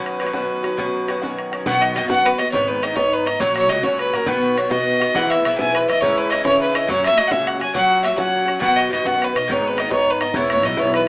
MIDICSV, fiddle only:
0, 0, Header, 1, 2, 480
1, 0, Start_track
1, 0, Key_signature, 5, "major"
1, 0, Tempo, 291829
1, 2727, Time_signature, 12, 3, 24, 8
1, 7992, Tempo, 289017
1, 18324, End_track
2, 0, Start_track
2, 0, Title_t, "Fiddle"
2, 0, Program_c, 0, 110
2, 0, Note_on_c, 0, 71, 85
2, 2210, Note_off_c, 0, 71, 0
2, 2738, Note_on_c, 0, 78, 111
2, 2989, Note_on_c, 0, 75, 102
2, 3014, Note_off_c, 0, 78, 0
2, 3190, Note_off_c, 0, 75, 0
2, 3200, Note_on_c, 0, 75, 91
2, 3422, Note_off_c, 0, 75, 0
2, 3439, Note_on_c, 0, 78, 112
2, 3705, Note_on_c, 0, 71, 95
2, 3729, Note_off_c, 0, 78, 0
2, 3925, Note_on_c, 0, 75, 105
2, 3949, Note_off_c, 0, 71, 0
2, 4132, Note_off_c, 0, 75, 0
2, 4142, Note_on_c, 0, 73, 99
2, 4414, Note_on_c, 0, 71, 100
2, 4439, Note_off_c, 0, 73, 0
2, 4652, Note_on_c, 0, 75, 98
2, 4677, Note_off_c, 0, 71, 0
2, 4870, Note_on_c, 0, 73, 111
2, 4895, Note_off_c, 0, 75, 0
2, 5150, Note_on_c, 0, 71, 100
2, 5175, Note_off_c, 0, 73, 0
2, 5363, Note_on_c, 0, 75, 96
2, 5387, Note_off_c, 0, 71, 0
2, 5585, Note_on_c, 0, 73, 114
2, 5610, Note_off_c, 0, 75, 0
2, 5836, Note_off_c, 0, 73, 0
2, 5846, Note_on_c, 0, 73, 111
2, 6073, Note_on_c, 0, 75, 94
2, 6097, Note_off_c, 0, 73, 0
2, 6310, Note_on_c, 0, 73, 109
2, 6335, Note_off_c, 0, 75, 0
2, 6567, Note_off_c, 0, 73, 0
2, 6576, Note_on_c, 0, 71, 99
2, 6823, Note_on_c, 0, 70, 95
2, 6848, Note_off_c, 0, 71, 0
2, 7021, Note_on_c, 0, 71, 105
2, 7045, Note_off_c, 0, 70, 0
2, 7521, Note_on_c, 0, 73, 103
2, 7546, Note_off_c, 0, 71, 0
2, 7740, Note_off_c, 0, 73, 0
2, 7750, Note_on_c, 0, 75, 112
2, 8488, Note_on_c, 0, 78, 123
2, 8513, Note_off_c, 0, 75, 0
2, 8728, Note_on_c, 0, 76, 112
2, 8753, Note_off_c, 0, 78, 0
2, 8953, Note_off_c, 0, 76, 0
2, 8963, Note_on_c, 0, 76, 89
2, 9177, Note_off_c, 0, 76, 0
2, 9187, Note_on_c, 0, 80, 127
2, 9488, Note_on_c, 0, 71, 111
2, 9513, Note_off_c, 0, 80, 0
2, 9702, Note_off_c, 0, 71, 0
2, 9720, Note_on_c, 0, 75, 111
2, 9897, Note_on_c, 0, 73, 101
2, 9922, Note_off_c, 0, 75, 0
2, 10185, Note_on_c, 0, 71, 107
2, 10210, Note_off_c, 0, 73, 0
2, 10391, Note_on_c, 0, 75, 114
2, 10416, Note_off_c, 0, 71, 0
2, 10628, Note_off_c, 0, 75, 0
2, 10641, Note_on_c, 0, 73, 119
2, 10885, Note_off_c, 0, 73, 0
2, 10899, Note_on_c, 0, 71, 99
2, 11141, Note_on_c, 0, 75, 95
2, 11166, Note_off_c, 0, 71, 0
2, 11374, Note_on_c, 0, 73, 117
2, 11399, Note_off_c, 0, 75, 0
2, 11623, Note_off_c, 0, 73, 0
2, 11633, Note_on_c, 0, 76, 118
2, 11838, Note_on_c, 0, 75, 99
2, 11863, Note_off_c, 0, 76, 0
2, 12005, Note_on_c, 0, 78, 96
2, 12029, Note_off_c, 0, 75, 0
2, 12065, Note_on_c, 0, 76, 107
2, 12090, Note_off_c, 0, 78, 0
2, 12327, Note_on_c, 0, 78, 101
2, 12352, Note_off_c, 0, 76, 0
2, 12563, Note_off_c, 0, 78, 0
2, 12570, Note_on_c, 0, 80, 98
2, 12783, Note_off_c, 0, 80, 0
2, 12812, Note_on_c, 0, 78, 114
2, 13263, Note_off_c, 0, 78, 0
2, 13283, Note_on_c, 0, 76, 87
2, 13493, Note_off_c, 0, 76, 0
2, 13503, Note_on_c, 0, 78, 108
2, 14179, Note_off_c, 0, 78, 0
2, 14216, Note_on_c, 0, 78, 127
2, 14476, Note_on_c, 0, 75, 118
2, 14501, Note_off_c, 0, 78, 0
2, 14716, Note_off_c, 0, 75, 0
2, 14745, Note_on_c, 0, 75, 93
2, 14973, Note_on_c, 0, 78, 113
2, 14998, Note_off_c, 0, 75, 0
2, 15268, Note_on_c, 0, 71, 97
2, 15293, Note_off_c, 0, 78, 0
2, 15482, Note_on_c, 0, 75, 103
2, 15507, Note_off_c, 0, 71, 0
2, 15719, Note_on_c, 0, 73, 90
2, 15744, Note_off_c, 0, 75, 0
2, 15988, Note_on_c, 0, 71, 98
2, 16013, Note_off_c, 0, 73, 0
2, 16194, Note_on_c, 0, 75, 100
2, 16219, Note_off_c, 0, 71, 0
2, 16386, Note_off_c, 0, 75, 0
2, 16396, Note_on_c, 0, 73, 111
2, 16701, Note_on_c, 0, 71, 94
2, 16726, Note_off_c, 0, 73, 0
2, 16894, Note_on_c, 0, 75, 93
2, 16919, Note_off_c, 0, 71, 0
2, 17129, Note_on_c, 0, 73, 104
2, 17154, Note_off_c, 0, 75, 0
2, 17370, Note_off_c, 0, 73, 0
2, 17380, Note_on_c, 0, 73, 101
2, 17617, Note_on_c, 0, 75, 96
2, 17642, Note_off_c, 0, 73, 0
2, 17842, Note_on_c, 0, 73, 112
2, 17867, Note_off_c, 0, 75, 0
2, 18093, Note_off_c, 0, 73, 0
2, 18103, Note_on_c, 0, 71, 91
2, 18311, Note_off_c, 0, 71, 0
2, 18324, End_track
0, 0, End_of_file